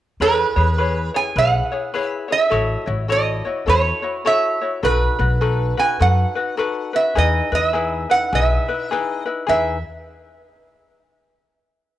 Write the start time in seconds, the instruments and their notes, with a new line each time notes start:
0.20 upright bass E2, ukulele E4 G#4 B4 C#5, resonator guitar played with a steel bar B4
0.56 upright bass E2, ukulele E4 G#4 C#5
0.78 ukulele E4 G#4 B4 C#5
1.14 ukulele E4 G#4 C#5, resonator guitar played with a steel bar G#5
1.36 upright bass B1, ukulele E4 G#4 B4 C#5, resonator guitar played with a steel bar F#5
1.72 ukulele E4 G#4 C#5
1.94 ukulele E4 G#4 B4 C#5
2.06 resonator guitar played with a steel bar E5
2.28 ukulele E4 G#4 C#5
2.32 resonator guitar played with a steel bar E5
2.50 upright bass A1, ukulele E4 F#4 A4 C#5
2.86 upright bass A1, ukulele E4 F#4 C#5
3.08 ukulele E4 F#4 A4 C#5, resonator guitar played with a steel bar D#5
3.45 ukulele E4 F#4 C#5
3.66 upright bass E2, ukulele E4 F#4 A4 C#5, resonator guitar played with a steel bar C#5
4.02 ukulele E4 F#4 C#5
4.25 ukulele E4 F#4 A4 C#5, resonator guitar played with a steel bar E5
4.61 ukulele E4 F#4 C#5
4.83 upright bass B1, ukulele D#4 F#4 A4 B4, resonator guitar played with a steel bar B4
5.19 upright bass B1, ukulele D#4 F#4 B4
5.41 ukulele D#4 F#4 A4 B4
5.77 ukulele D#4 F#4 B4, resonator guitar played with a steel bar G#5
5.99 upright bass F#2, ukulele D#4 F#4 A4 B4, resonator guitar played with a steel bar F#5
6.35 ukulele D#4 F#4 B4
6.57 ukulele D#4 F#4 A4 B4
6.93 ukulele D#4 F#4 B4, resonator guitar played with a steel bar E5
7.15 upright bass E2, ukulele D#4 E4 G#4 B4, resonator guitar played with a steel bar D#5
7.52 upright bass E2, ukulele D#4 E4 B4, resonator guitar played with a steel bar D#5
7.66 resonator guitar played with a steel bar E5
7.73 ukulele D#4 E4 G#4 B4
8.10 ukulele D#4 E4 B4, resonator guitar played with a steel bar F#5
8.33 upright bass B1, ukulele D#4 E4 G#4 B4, resonator guitar played with a steel bar E5
8.68 ukulele D#4 E4 B4
8.91 ukulele D#4 E4 G#4 B4
8.95 resonator guitar played with a steel bar D#5
9.26 ukulele D#4 E4 B4
9.47 upright bass E2, ukulele D#4 E4 G#4 B4, resonator guitar played with a steel bar E5